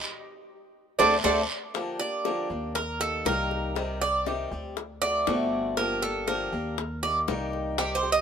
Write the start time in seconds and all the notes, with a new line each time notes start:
0.99 D2 A3 C4 D4 A4 C5 D5 F#5, cowbell, long guiro
1.24 D2 A3 C4 D4 A4 C5 D5 F#5, cowbell, long guiro
1.74 D3 F3 A#3 D4 G4, high bongo
2.00 A#3 D4 G4 D5, high bongo
2.25 D3 F3 A#3 D4 G4, high bongo
2.50 D#2 A#3 D4 G4
2.75 A#4, muted steel-string acoustic guitar stroke, high bongo
3.00 A#3 D#4 G4 A4, high bongo
3.25 C2 D#3 G3 A#3 D#4 G4 A#4, high bongo, low bongo
3.51 high bongo
3.75 C3 D#3 G3 C4 G4, high bongo
4.01 G3 C4 G4 D5, high bongo
4.26 C3 D#3 G3 C4 G4, high bongo
4.51 D2 G3 C4 G4
4.77 muted steel-string acoustic guitar stroke, high bongo
5.02 A3 C4 F#4 D5, high bongo
5.27 G1 D3 A3 C4 F#4, high bongo, low bongo
5.77 D3 F3 A#3 D4 G4 A#4, high bongo
6.02 A#3 D4 G4 A4, high bongo
6.27 D3 F3 A#3 D4 G4 A#4, high bongo
6.52 D#2 A#3 D4 G4
6.78 muted steel-string acoustic guitar stroke, high bongo
7.03 A#3 D#4 G4 D5, high bongo
7.28 C2 D#3 G3 A#3 D#4 G4, high bongo, low bongo
7.53 high bongo
7.78 C3 D#3 G3 C4 G4, high bongo
7.95 C5
8.03 G3 C4 G4, high bongo
8.12 D#5